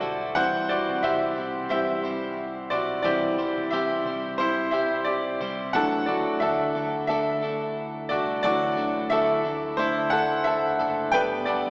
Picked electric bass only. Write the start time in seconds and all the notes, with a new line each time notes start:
0.02 B1
0.36 C2
0.89 C2
1.37 C2
2.71 B1
3.05 C2
3.57 C2
4.05 C2
5.41 C2
5.75 D2
6.27 D2
6.76 D2
8.11 C2
8.44 D2
8.97 D2
9.45 D2
10.80 F#1
11.14 G1
11.66 G1